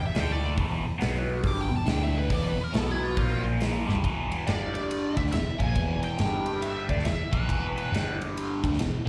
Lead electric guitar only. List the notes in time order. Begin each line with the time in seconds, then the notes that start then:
0.06 E5
0.19 G5
0.32 D5
1.47 D6
1.61 G5
1.76 A5
1.90 G5
2.03 E5
2.19 B4
2.32 D5
2.49 B4
2.64 A#4
2.76 A4
2.91 E4
3.03 F4
4.47 D5
4.74 D5
5.17 E5
5.32 E5
5.58 G#5
6.04 G5
6.62 E5
6.89 D5
7.05 E5
7.32 B4